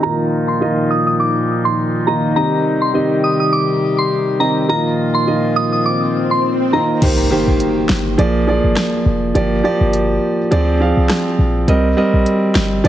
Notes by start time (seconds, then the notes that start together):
Already playing: D#4
0.02 A#2 D#3 F3 A#3 F4 D#5 A#5
0.48 C6
0.61 D#3 A#3 F4 D#5
0.91 D#6
1.07 D#6
1.20 D6
1.65 C6
2.07 D#3 A#3 F4 D#5 A#5
2.36 C3 D#3 G3 C4 G4 D#5 A#5, swell
2.82 C6
2.94 D#3 C4 G4 D#5
3.24 D#6
3.40 D#6
3.53 D6
3.98 C6
4.39 D#3 C4 G4 D#5 A#5
4.68 A#2 D#3 F3 A#3 F4 D#5 A#5
5.15 C6
5.26 D#3 A#3 F4 D#5
5.56 D#6
5.72 D#6
5.86 D6
6.31 C6
6.72 D#3 A#3 F4 D#5 A#5
7.01 C2 D#3 A#3 G4 C5, closed hi-hat, crash, impact
7.30 D#3 A#3 G4 C5
7.47 A#1
7.60 closed hi-hat
7.89 G1, snare
8.18 A#1 F3 A#3 G#4 D5, closed hi-hat
8.47 F3 A#3 G#4 D5
8.64 G#1
8.77 cross-stick, snare, closed hi-hat
9.06 F1
9.35 G1 F3 A#3 G4 D5, closed hi-hat
9.64 F3 A#3 G4 D5
9.81 G1
9.93 closed hi-hat
10.51 D2 F3 C4 G#4 D5, closed hi-hat
10.80 F3 C4 G#4 F5
10.97 C2
11.10 cross-stick, snare, closed hi-hat
11.39 A#1
11.68 C2 G3 C4 A#4 D#5, closed hi-hat
11.97 G3 C4 A#4 D#5
12.13 A#1
12.26 closed hi-hat
12.55 G1, snare
12.84 A#1 F3 A#3 G#4 D5, closed hi-hat